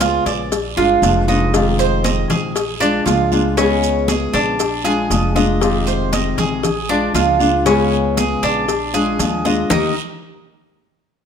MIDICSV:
0, 0, Header, 1, 6, 480
1, 0, Start_track
1, 0, Tempo, 510638
1, 1445, Time_signature, 4, 2, 24, 8
1, 10576, End_track
2, 0, Start_track
2, 0, Title_t, "Cuban tres"
2, 0, Program_c, 0, 25
2, 5, Note_on_c, 0, 65, 79
2, 238, Note_off_c, 0, 65, 0
2, 248, Note_on_c, 0, 74, 74
2, 712, Note_off_c, 0, 74, 0
2, 726, Note_on_c, 0, 65, 92
2, 1191, Note_off_c, 0, 65, 0
2, 1206, Note_on_c, 0, 63, 77
2, 1438, Note_off_c, 0, 63, 0
2, 1683, Note_on_c, 0, 72, 84
2, 1915, Note_off_c, 0, 72, 0
2, 1919, Note_on_c, 0, 75, 71
2, 2154, Note_off_c, 0, 75, 0
2, 2160, Note_on_c, 0, 68, 71
2, 2627, Note_off_c, 0, 68, 0
2, 2637, Note_on_c, 0, 62, 96
2, 2870, Note_off_c, 0, 62, 0
2, 2874, Note_on_c, 0, 65, 68
2, 3343, Note_off_c, 0, 65, 0
2, 3359, Note_on_c, 0, 61, 88
2, 3826, Note_off_c, 0, 61, 0
2, 3836, Note_on_c, 0, 68, 73
2, 4072, Note_off_c, 0, 68, 0
2, 4075, Note_on_c, 0, 62, 88
2, 4544, Note_off_c, 0, 62, 0
2, 4556, Note_on_c, 0, 68, 86
2, 5024, Note_off_c, 0, 68, 0
2, 5036, Note_on_c, 0, 75, 75
2, 5505, Note_off_c, 0, 75, 0
2, 5517, Note_on_c, 0, 72, 77
2, 5752, Note_off_c, 0, 72, 0
2, 5759, Note_on_c, 0, 75, 73
2, 5993, Note_off_c, 0, 75, 0
2, 5999, Note_on_c, 0, 68, 81
2, 6467, Note_off_c, 0, 68, 0
2, 6479, Note_on_c, 0, 62, 99
2, 6712, Note_off_c, 0, 62, 0
2, 6716, Note_on_c, 0, 65, 76
2, 7185, Note_off_c, 0, 65, 0
2, 7199, Note_on_c, 0, 61, 85
2, 7667, Note_off_c, 0, 61, 0
2, 7683, Note_on_c, 0, 68, 72
2, 7916, Note_off_c, 0, 68, 0
2, 7924, Note_on_c, 0, 62, 88
2, 8390, Note_off_c, 0, 62, 0
2, 8404, Note_on_c, 0, 68, 91
2, 8870, Note_off_c, 0, 68, 0
2, 8884, Note_on_c, 0, 75, 76
2, 9117, Note_off_c, 0, 75, 0
2, 9118, Note_on_c, 0, 63, 100
2, 9126, Note_on_c, 0, 70, 72
2, 9130, Note_on_c, 0, 75, 100
2, 9346, Note_off_c, 0, 63, 0
2, 9347, Note_off_c, 0, 70, 0
2, 9351, Note_off_c, 0, 75, 0
2, 10576, End_track
3, 0, Start_track
3, 0, Title_t, "Nylon-string guitar"
3, 0, Program_c, 1, 24
3, 0, Note_on_c, 1, 49, 70
3, 0, Note_on_c, 1, 56, 75
3, 0, Note_on_c, 1, 59, 88
3, 0, Note_on_c, 1, 65, 84
3, 0, Note_on_c, 1, 68, 86
3, 473, Note_off_c, 1, 49, 0
3, 478, Note_off_c, 1, 56, 0
3, 480, Note_off_c, 1, 59, 0
3, 483, Note_off_c, 1, 65, 0
3, 486, Note_off_c, 1, 68, 0
3, 723, Note_on_c, 1, 65, 79
3, 735, Note_on_c, 1, 62, 64
3, 739, Note_on_c, 1, 56, 57
3, 955, Note_off_c, 1, 56, 0
3, 955, Note_off_c, 1, 65, 0
3, 960, Note_off_c, 1, 62, 0
3, 960, Note_on_c, 1, 53, 56
3, 966, Note_on_c, 1, 56, 52
3, 972, Note_on_c, 1, 62, 54
3, 978, Note_on_c, 1, 65, 54
3, 1190, Note_off_c, 1, 65, 0
3, 1193, Note_off_c, 1, 53, 0
3, 1196, Note_off_c, 1, 56, 0
3, 1199, Note_off_c, 1, 62, 0
3, 1201, Note_on_c, 1, 65, 71
3, 1209, Note_on_c, 1, 62, 59
3, 1216, Note_on_c, 1, 56, 59
3, 1433, Note_off_c, 1, 65, 0
3, 1437, Note_off_c, 1, 62, 0
3, 1438, Note_on_c, 1, 48, 77
3, 1441, Note_off_c, 1, 56, 0
3, 1448, Note_on_c, 1, 51, 82
3, 1452, Note_on_c, 1, 56, 88
3, 1458, Note_on_c, 1, 60, 83
3, 1464, Note_on_c, 1, 65, 86
3, 2391, Note_off_c, 1, 48, 0
3, 2396, Note_off_c, 1, 51, 0
3, 2400, Note_off_c, 1, 60, 0
3, 2403, Note_off_c, 1, 56, 0
3, 2405, Note_off_c, 1, 65, 0
3, 2633, Note_on_c, 1, 65, 72
3, 2644, Note_on_c, 1, 62, 73
3, 2650, Note_on_c, 1, 56, 62
3, 2867, Note_off_c, 1, 56, 0
3, 2868, Note_off_c, 1, 65, 0
3, 2871, Note_on_c, 1, 53, 52
3, 2874, Note_off_c, 1, 62, 0
3, 2878, Note_on_c, 1, 56, 60
3, 2884, Note_on_c, 1, 62, 60
3, 2891, Note_on_c, 1, 65, 65
3, 3104, Note_off_c, 1, 65, 0
3, 3107, Note_off_c, 1, 53, 0
3, 3111, Note_off_c, 1, 56, 0
3, 3112, Note_off_c, 1, 62, 0
3, 3115, Note_on_c, 1, 65, 69
3, 3123, Note_on_c, 1, 62, 67
3, 3132, Note_on_c, 1, 56, 60
3, 3347, Note_off_c, 1, 56, 0
3, 3349, Note_off_c, 1, 65, 0
3, 3353, Note_off_c, 1, 62, 0
3, 3354, Note_on_c, 1, 49, 78
3, 3358, Note_on_c, 1, 56, 82
3, 3366, Note_on_c, 1, 59, 86
3, 3371, Note_on_c, 1, 65, 84
3, 3378, Note_on_c, 1, 68, 83
3, 4308, Note_off_c, 1, 49, 0
3, 4308, Note_off_c, 1, 56, 0
3, 4313, Note_off_c, 1, 59, 0
3, 4315, Note_off_c, 1, 65, 0
3, 4316, Note_off_c, 1, 68, 0
3, 4551, Note_on_c, 1, 65, 68
3, 4558, Note_on_c, 1, 62, 62
3, 4564, Note_on_c, 1, 56, 57
3, 4787, Note_off_c, 1, 65, 0
3, 4790, Note_off_c, 1, 56, 0
3, 4790, Note_off_c, 1, 62, 0
3, 4793, Note_on_c, 1, 53, 56
3, 4802, Note_on_c, 1, 56, 50
3, 4805, Note_on_c, 1, 62, 58
3, 4812, Note_on_c, 1, 65, 59
3, 5018, Note_off_c, 1, 65, 0
3, 5024, Note_off_c, 1, 62, 0
3, 5028, Note_off_c, 1, 53, 0
3, 5029, Note_on_c, 1, 65, 76
3, 5032, Note_off_c, 1, 56, 0
3, 5035, Note_on_c, 1, 62, 69
3, 5044, Note_on_c, 1, 56, 62
3, 5266, Note_off_c, 1, 65, 0
3, 5268, Note_on_c, 1, 48, 86
3, 5269, Note_off_c, 1, 62, 0
3, 5273, Note_off_c, 1, 56, 0
3, 5274, Note_on_c, 1, 51, 81
3, 5284, Note_on_c, 1, 56, 77
3, 5290, Note_on_c, 1, 60, 88
3, 5294, Note_on_c, 1, 65, 91
3, 6226, Note_off_c, 1, 48, 0
3, 6229, Note_off_c, 1, 51, 0
3, 6236, Note_off_c, 1, 56, 0
3, 6237, Note_off_c, 1, 60, 0
3, 6243, Note_off_c, 1, 65, 0
3, 6479, Note_on_c, 1, 65, 74
3, 6490, Note_on_c, 1, 62, 68
3, 6497, Note_on_c, 1, 56, 59
3, 6707, Note_off_c, 1, 56, 0
3, 6711, Note_off_c, 1, 65, 0
3, 6713, Note_off_c, 1, 62, 0
3, 6717, Note_on_c, 1, 53, 57
3, 6718, Note_on_c, 1, 56, 55
3, 6724, Note_on_c, 1, 62, 68
3, 6731, Note_on_c, 1, 65, 59
3, 6940, Note_off_c, 1, 65, 0
3, 6947, Note_off_c, 1, 62, 0
3, 6950, Note_off_c, 1, 53, 0
3, 6951, Note_off_c, 1, 56, 0
3, 6951, Note_on_c, 1, 65, 78
3, 6959, Note_on_c, 1, 62, 68
3, 6966, Note_on_c, 1, 56, 57
3, 7188, Note_off_c, 1, 65, 0
3, 7191, Note_off_c, 1, 62, 0
3, 7192, Note_off_c, 1, 56, 0
3, 7194, Note_on_c, 1, 49, 81
3, 7203, Note_on_c, 1, 56, 91
3, 7210, Note_on_c, 1, 59, 92
3, 7216, Note_on_c, 1, 65, 82
3, 7222, Note_on_c, 1, 68, 78
3, 8150, Note_off_c, 1, 49, 0
3, 8154, Note_off_c, 1, 56, 0
3, 8158, Note_off_c, 1, 59, 0
3, 8161, Note_off_c, 1, 65, 0
3, 8164, Note_off_c, 1, 68, 0
3, 8398, Note_on_c, 1, 65, 65
3, 8406, Note_on_c, 1, 62, 67
3, 8413, Note_on_c, 1, 56, 58
3, 8632, Note_off_c, 1, 56, 0
3, 8632, Note_off_c, 1, 65, 0
3, 8636, Note_off_c, 1, 62, 0
3, 8640, Note_on_c, 1, 53, 61
3, 8643, Note_on_c, 1, 56, 51
3, 8650, Note_on_c, 1, 62, 56
3, 8656, Note_on_c, 1, 65, 52
3, 8872, Note_off_c, 1, 65, 0
3, 8873, Note_off_c, 1, 53, 0
3, 8874, Note_off_c, 1, 56, 0
3, 8878, Note_off_c, 1, 62, 0
3, 8884, Note_on_c, 1, 65, 65
3, 8893, Note_on_c, 1, 62, 59
3, 8896, Note_on_c, 1, 56, 59
3, 9115, Note_off_c, 1, 65, 0
3, 9119, Note_off_c, 1, 62, 0
3, 9119, Note_on_c, 1, 51, 77
3, 9120, Note_off_c, 1, 56, 0
3, 9124, Note_on_c, 1, 58, 88
3, 9132, Note_on_c, 1, 63, 83
3, 9136, Note_on_c, 1, 67, 81
3, 9314, Note_off_c, 1, 51, 0
3, 9317, Note_off_c, 1, 58, 0
3, 9321, Note_off_c, 1, 63, 0
3, 9323, Note_off_c, 1, 67, 0
3, 10576, End_track
4, 0, Start_track
4, 0, Title_t, "Upright bass"
4, 0, Program_c, 2, 32
4, 0, Note_on_c, 2, 37, 97
4, 182, Note_off_c, 2, 37, 0
4, 245, Note_on_c, 2, 34, 101
4, 691, Note_off_c, 2, 34, 0
4, 722, Note_on_c, 2, 31, 76
4, 946, Note_off_c, 2, 31, 0
4, 959, Note_on_c, 2, 29, 108
4, 2099, Note_off_c, 2, 29, 0
4, 2160, Note_on_c, 2, 34, 90
4, 2843, Note_off_c, 2, 34, 0
4, 2877, Note_on_c, 2, 37, 100
4, 4018, Note_off_c, 2, 37, 0
4, 4078, Note_on_c, 2, 34, 105
4, 4762, Note_off_c, 2, 34, 0
4, 4796, Note_on_c, 2, 29, 105
4, 5937, Note_off_c, 2, 29, 0
4, 5991, Note_on_c, 2, 34, 96
4, 6680, Note_off_c, 2, 34, 0
4, 6712, Note_on_c, 2, 37, 97
4, 7857, Note_off_c, 2, 37, 0
4, 7919, Note_on_c, 2, 34, 91
4, 8604, Note_off_c, 2, 34, 0
4, 8641, Note_on_c, 2, 39, 100
4, 9067, Note_off_c, 2, 39, 0
4, 9123, Note_on_c, 2, 39, 94
4, 9348, Note_off_c, 2, 39, 0
4, 10576, End_track
5, 0, Start_track
5, 0, Title_t, "Muted nylon-string guitar strokes"
5, 483, Note_on_c, 9, 29, 62
5, 577, Note_off_c, 9, 29, 0
5, 2403, Note_on_c, 9, 29, 65
5, 2497, Note_off_c, 9, 29, 0
5, 4311, Note_on_c, 9, 29, 63
5, 4405, Note_off_c, 9, 29, 0
5, 6234, Note_on_c, 9, 29, 65
5, 6328, Note_off_c, 9, 29, 0
5, 8164, Note_on_c, 9, 29, 75
5, 8258, Note_off_c, 9, 29, 0
5, 10576, End_track
6, 0, Start_track
6, 0, Title_t, "Drums"
6, 4, Note_on_c, 9, 73, 70
6, 5, Note_on_c, 9, 56, 76
6, 6, Note_on_c, 9, 70, 78
6, 10, Note_on_c, 9, 63, 102
6, 98, Note_off_c, 9, 73, 0
6, 99, Note_off_c, 9, 56, 0
6, 100, Note_off_c, 9, 70, 0
6, 104, Note_off_c, 9, 63, 0
6, 246, Note_on_c, 9, 56, 74
6, 248, Note_on_c, 9, 73, 70
6, 249, Note_on_c, 9, 70, 32
6, 340, Note_off_c, 9, 56, 0
6, 342, Note_off_c, 9, 73, 0
6, 343, Note_off_c, 9, 70, 0
6, 489, Note_on_c, 9, 56, 88
6, 489, Note_on_c, 9, 74, 78
6, 490, Note_on_c, 9, 70, 82
6, 491, Note_on_c, 9, 63, 36
6, 583, Note_off_c, 9, 56, 0
6, 583, Note_off_c, 9, 74, 0
6, 584, Note_off_c, 9, 70, 0
6, 585, Note_off_c, 9, 63, 0
6, 729, Note_on_c, 9, 63, 34
6, 823, Note_off_c, 9, 63, 0
6, 965, Note_on_c, 9, 63, 96
6, 969, Note_on_c, 9, 70, 83
6, 971, Note_on_c, 9, 56, 69
6, 971, Note_on_c, 9, 73, 70
6, 1059, Note_off_c, 9, 63, 0
6, 1063, Note_off_c, 9, 70, 0
6, 1065, Note_off_c, 9, 56, 0
6, 1065, Note_off_c, 9, 73, 0
6, 1204, Note_on_c, 9, 63, 81
6, 1208, Note_on_c, 9, 70, 33
6, 1213, Note_on_c, 9, 73, 83
6, 1298, Note_off_c, 9, 63, 0
6, 1302, Note_off_c, 9, 70, 0
6, 1307, Note_off_c, 9, 73, 0
6, 1444, Note_on_c, 9, 63, 34
6, 1448, Note_on_c, 9, 56, 111
6, 1448, Note_on_c, 9, 70, 75
6, 1453, Note_on_c, 9, 74, 67
6, 1538, Note_off_c, 9, 63, 0
6, 1542, Note_off_c, 9, 56, 0
6, 1542, Note_off_c, 9, 70, 0
6, 1547, Note_off_c, 9, 74, 0
6, 1684, Note_on_c, 9, 63, 40
6, 1692, Note_on_c, 9, 70, 63
6, 1778, Note_off_c, 9, 63, 0
6, 1786, Note_off_c, 9, 70, 0
6, 1923, Note_on_c, 9, 63, 106
6, 1926, Note_on_c, 9, 73, 72
6, 1927, Note_on_c, 9, 56, 74
6, 1931, Note_on_c, 9, 70, 76
6, 2017, Note_off_c, 9, 63, 0
6, 2020, Note_off_c, 9, 73, 0
6, 2021, Note_off_c, 9, 56, 0
6, 2025, Note_off_c, 9, 70, 0
6, 2163, Note_on_c, 9, 73, 70
6, 2165, Note_on_c, 9, 56, 81
6, 2167, Note_on_c, 9, 63, 34
6, 2167, Note_on_c, 9, 64, 91
6, 2170, Note_on_c, 9, 70, 32
6, 2257, Note_off_c, 9, 73, 0
6, 2259, Note_off_c, 9, 56, 0
6, 2261, Note_off_c, 9, 63, 0
6, 2261, Note_off_c, 9, 64, 0
6, 2264, Note_off_c, 9, 70, 0
6, 2399, Note_on_c, 9, 74, 81
6, 2404, Note_on_c, 9, 56, 112
6, 2405, Note_on_c, 9, 63, 37
6, 2409, Note_on_c, 9, 70, 80
6, 2493, Note_off_c, 9, 74, 0
6, 2498, Note_off_c, 9, 56, 0
6, 2499, Note_off_c, 9, 63, 0
6, 2503, Note_off_c, 9, 70, 0
6, 2645, Note_on_c, 9, 63, 33
6, 2650, Note_on_c, 9, 70, 72
6, 2739, Note_off_c, 9, 63, 0
6, 2744, Note_off_c, 9, 70, 0
6, 2879, Note_on_c, 9, 73, 66
6, 2882, Note_on_c, 9, 56, 66
6, 2886, Note_on_c, 9, 63, 95
6, 2887, Note_on_c, 9, 70, 88
6, 2973, Note_off_c, 9, 73, 0
6, 2976, Note_off_c, 9, 56, 0
6, 2980, Note_off_c, 9, 63, 0
6, 2981, Note_off_c, 9, 70, 0
6, 3119, Note_on_c, 9, 73, 72
6, 3126, Note_on_c, 9, 63, 96
6, 3126, Note_on_c, 9, 70, 27
6, 3213, Note_off_c, 9, 73, 0
6, 3220, Note_off_c, 9, 63, 0
6, 3220, Note_off_c, 9, 70, 0
6, 3358, Note_on_c, 9, 74, 79
6, 3361, Note_on_c, 9, 63, 37
6, 3362, Note_on_c, 9, 70, 72
6, 3363, Note_on_c, 9, 56, 124
6, 3452, Note_off_c, 9, 74, 0
6, 3455, Note_off_c, 9, 63, 0
6, 3456, Note_off_c, 9, 70, 0
6, 3457, Note_off_c, 9, 56, 0
6, 3601, Note_on_c, 9, 63, 38
6, 3604, Note_on_c, 9, 70, 63
6, 3695, Note_off_c, 9, 63, 0
6, 3698, Note_off_c, 9, 70, 0
6, 3837, Note_on_c, 9, 63, 104
6, 3841, Note_on_c, 9, 73, 75
6, 3842, Note_on_c, 9, 56, 70
6, 3845, Note_on_c, 9, 70, 75
6, 3931, Note_off_c, 9, 63, 0
6, 3935, Note_off_c, 9, 73, 0
6, 3936, Note_off_c, 9, 56, 0
6, 3939, Note_off_c, 9, 70, 0
6, 4083, Note_on_c, 9, 70, 33
6, 4085, Note_on_c, 9, 73, 75
6, 4086, Note_on_c, 9, 56, 81
6, 4177, Note_off_c, 9, 70, 0
6, 4179, Note_off_c, 9, 73, 0
6, 4180, Note_off_c, 9, 56, 0
6, 4320, Note_on_c, 9, 70, 85
6, 4321, Note_on_c, 9, 63, 35
6, 4323, Note_on_c, 9, 56, 98
6, 4326, Note_on_c, 9, 74, 79
6, 4414, Note_off_c, 9, 70, 0
6, 4415, Note_off_c, 9, 63, 0
6, 4417, Note_off_c, 9, 56, 0
6, 4420, Note_off_c, 9, 74, 0
6, 4562, Note_on_c, 9, 70, 63
6, 4563, Note_on_c, 9, 63, 34
6, 4656, Note_off_c, 9, 70, 0
6, 4657, Note_off_c, 9, 63, 0
6, 4800, Note_on_c, 9, 63, 104
6, 4801, Note_on_c, 9, 56, 68
6, 4805, Note_on_c, 9, 70, 87
6, 4807, Note_on_c, 9, 73, 72
6, 4894, Note_off_c, 9, 63, 0
6, 4895, Note_off_c, 9, 56, 0
6, 4899, Note_off_c, 9, 70, 0
6, 4901, Note_off_c, 9, 73, 0
6, 5038, Note_on_c, 9, 63, 86
6, 5041, Note_on_c, 9, 73, 78
6, 5043, Note_on_c, 9, 70, 33
6, 5132, Note_off_c, 9, 63, 0
6, 5135, Note_off_c, 9, 73, 0
6, 5137, Note_off_c, 9, 70, 0
6, 5278, Note_on_c, 9, 56, 127
6, 5280, Note_on_c, 9, 74, 77
6, 5282, Note_on_c, 9, 63, 36
6, 5285, Note_on_c, 9, 70, 70
6, 5372, Note_off_c, 9, 56, 0
6, 5374, Note_off_c, 9, 74, 0
6, 5376, Note_off_c, 9, 63, 0
6, 5379, Note_off_c, 9, 70, 0
6, 5522, Note_on_c, 9, 63, 40
6, 5522, Note_on_c, 9, 70, 57
6, 5616, Note_off_c, 9, 63, 0
6, 5616, Note_off_c, 9, 70, 0
6, 5759, Note_on_c, 9, 56, 74
6, 5761, Note_on_c, 9, 73, 80
6, 5762, Note_on_c, 9, 63, 96
6, 5762, Note_on_c, 9, 70, 76
6, 5853, Note_off_c, 9, 56, 0
6, 5855, Note_off_c, 9, 73, 0
6, 5856, Note_off_c, 9, 63, 0
6, 5856, Note_off_c, 9, 70, 0
6, 5996, Note_on_c, 9, 56, 74
6, 5998, Note_on_c, 9, 73, 67
6, 6005, Note_on_c, 9, 63, 36
6, 6005, Note_on_c, 9, 64, 79
6, 6005, Note_on_c, 9, 70, 33
6, 6090, Note_off_c, 9, 56, 0
6, 6092, Note_off_c, 9, 73, 0
6, 6099, Note_off_c, 9, 63, 0
6, 6099, Note_off_c, 9, 64, 0
6, 6099, Note_off_c, 9, 70, 0
6, 6235, Note_on_c, 9, 74, 72
6, 6237, Note_on_c, 9, 56, 95
6, 6245, Note_on_c, 9, 70, 75
6, 6248, Note_on_c, 9, 63, 35
6, 6248, Note_on_c, 9, 64, 76
6, 6329, Note_off_c, 9, 74, 0
6, 6331, Note_off_c, 9, 56, 0
6, 6339, Note_off_c, 9, 70, 0
6, 6342, Note_off_c, 9, 63, 0
6, 6342, Note_off_c, 9, 64, 0
6, 6489, Note_on_c, 9, 63, 33
6, 6583, Note_off_c, 9, 63, 0
6, 6717, Note_on_c, 9, 73, 74
6, 6721, Note_on_c, 9, 56, 72
6, 6724, Note_on_c, 9, 63, 93
6, 6725, Note_on_c, 9, 70, 78
6, 6811, Note_off_c, 9, 73, 0
6, 6815, Note_off_c, 9, 56, 0
6, 6818, Note_off_c, 9, 63, 0
6, 6819, Note_off_c, 9, 70, 0
6, 6960, Note_on_c, 9, 73, 81
6, 6964, Note_on_c, 9, 63, 82
6, 6965, Note_on_c, 9, 70, 32
6, 7054, Note_off_c, 9, 73, 0
6, 7058, Note_off_c, 9, 63, 0
6, 7059, Note_off_c, 9, 70, 0
6, 7198, Note_on_c, 9, 74, 75
6, 7200, Note_on_c, 9, 56, 115
6, 7203, Note_on_c, 9, 70, 71
6, 7292, Note_off_c, 9, 74, 0
6, 7294, Note_off_c, 9, 56, 0
6, 7297, Note_off_c, 9, 70, 0
6, 7445, Note_on_c, 9, 63, 36
6, 7539, Note_off_c, 9, 63, 0
6, 7682, Note_on_c, 9, 56, 64
6, 7682, Note_on_c, 9, 73, 66
6, 7685, Note_on_c, 9, 63, 111
6, 7687, Note_on_c, 9, 70, 78
6, 7776, Note_off_c, 9, 56, 0
6, 7776, Note_off_c, 9, 73, 0
6, 7779, Note_off_c, 9, 63, 0
6, 7781, Note_off_c, 9, 70, 0
6, 7922, Note_on_c, 9, 73, 73
6, 7924, Note_on_c, 9, 56, 74
6, 7929, Note_on_c, 9, 70, 34
6, 8016, Note_off_c, 9, 73, 0
6, 8018, Note_off_c, 9, 56, 0
6, 8023, Note_off_c, 9, 70, 0
6, 8164, Note_on_c, 9, 56, 93
6, 8166, Note_on_c, 9, 74, 77
6, 8167, Note_on_c, 9, 70, 80
6, 8170, Note_on_c, 9, 63, 35
6, 8258, Note_off_c, 9, 56, 0
6, 8260, Note_off_c, 9, 74, 0
6, 8261, Note_off_c, 9, 70, 0
6, 8264, Note_off_c, 9, 63, 0
6, 8403, Note_on_c, 9, 70, 68
6, 8410, Note_on_c, 9, 63, 35
6, 8497, Note_off_c, 9, 70, 0
6, 8504, Note_off_c, 9, 63, 0
6, 8643, Note_on_c, 9, 56, 73
6, 8645, Note_on_c, 9, 70, 88
6, 8647, Note_on_c, 9, 63, 100
6, 8647, Note_on_c, 9, 73, 70
6, 8737, Note_off_c, 9, 56, 0
6, 8739, Note_off_c, 9, 70, 0
6, 8741, Note_off_c, 9, 63, 0
6, 8741, Note_off_c, 9, 73, 0
6, 8888, Note_on_c, 9, 63, 89
6, 8889, Note_on_c, 9, 73, 78
6, 8890, Note_on_c, 9, 70, 31
6, 8982, Note_off_c, 9, 63, 0
6, 8983, Note_off_c, 9, 73, 0
6, 8984, Note_off_c, 9, 70, 0
6, 9119, Note_on_c, 9, 61, 106
6, 9123, Note_on_c, 9, 74, 100
6, 9127, Note_on_c, 9, 64, 102
6, 9127, Note_on_c, 9, 70, 104
6, 9213, Note_off_c, 9, 61, 0
6, 9217, Note_off_c, 9, 74, 0
6, 9221, Note_off_c, 9, 64, 0
6, 9221, Note_off_c, 9, 70, 0
6, 10576, End_track
0, 0, End_of_file